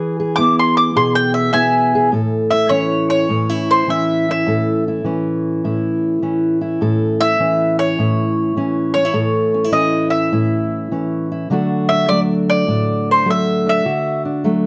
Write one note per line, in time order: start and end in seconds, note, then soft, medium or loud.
0.00 2.69 E3 medium
0.00 0.17 G#4 medium
0.20 0.95 G#4 medium
0.36 1.53 B3 medium
0.36 1.54 E4 medium
0.36 0.55 D6 medium
0.59 0.76 C6 medium
0.77 0.95 D6 medium
0.95 2.12 B2 medium
0.95 1.93 G#4 medium
0.95 1.14 C6 medium
1.15 1.33 G5 loud
1.34 1.51 E5 medium
1.53 2.10 B3 medium
1.53 2.10 E4 medium
1.53 2.07 E5 medium
1.53 2.10 G#5 medium
1.95 2.10 G#4 medium
2.12 3.29 A2 medium
2.12 4.47 A4 medium
2.51 3.29 E4 medium
2.51 2.70 E5 medium
2.69 3.87 E3 medium
2.69 3.29 C#4 medium
2.69 3.09 C#5 medium
3.10 3.70 C#5 medium
3.29 4.46 A2 medium
3.29 3.49 C#4 medium
3.49 4.27 E4 soft
3.71 3.89 C5 medium
3.87 5.04 E3 medium
3.87 5.05 C#4 medium
3.87 4.30 E5 medium
4.29 4.88 E4 medium
4.29 4.83 E5 medium
4.47 5.64 A2 medium
4.47 6.81 A4 medium
4.88 5.64 E4 medium
5.04 6.22 E3 medium
5.04 6.23 C#4 medium
5.64 6.81 A2 medium
5.64 6.61 E4 medium
6.22 7.39 E3 medium
6.22 7.40 C#4 medium
6.61 7.21 E4 medium
6.81 7.98 A2 medium
6.81 9.13 A4 medium
7.21 7.99 E4 medium
7.21 7.79 E5 loud
7.40 8.55 E3 medium
7.40 8.56 C#4 medium
7.79 8.93 C#5 medium
7.99 9.12 A2 medium
7.99 8.96 E4 medium
8.56 9.71 E3 medium
8.56 8.95 C#4 medium
8.94 9.05 C#4 medium
8.94 9.72 C#5 medium
9.05 9.14 E4 soft
9.13 10.31 A2 medium
9.13 11.53 A4 medium
9.54 9.64 C#4 medium
9.64 10.31 E4 soft
9.72 10.90 E3 medium
9.72 10.90 C#4 medium
9.72 10.10 D#5 medium
10.10 11.25 E5 medium
10.32 11.47 A2 medium
10.32 11.30 E4 medium
10.91 11.50 E3 medium
10.91 11.48 C#4 medium
11.32 11.47 E4 medium
11.50 13.82 D3 medium
11.50 12.09 F#3 medium
11.50 12.10 A3 medium
11.50 11.91 D4 medium
11.50 13.84 F#4 medium
11.89 12.68 D4 soft
11.89 12.08 E5 medium
12.09 13.24 F#3 medium
12.09 13.26 A3 medium
12.09 12.19 D5 medium
12.50 13.09 D5 medium
12.68 13.82 A2 medium
12.68 13.65 D4 medium
13.11 13.28 C5 medium
13.26 13.82 F#3 medium
13.26 14.44 A3 medium
13.30 13.68 E5 medium
13.66 13.82 D4 medium
13.66 14.22 E5 medium
13.85 14.67 D3 medium
13.85 14.67 F#4 medium
14.25 14.67 D4 medium
14.44 14.67 F#3 medium
14.44 14.67 A3 medium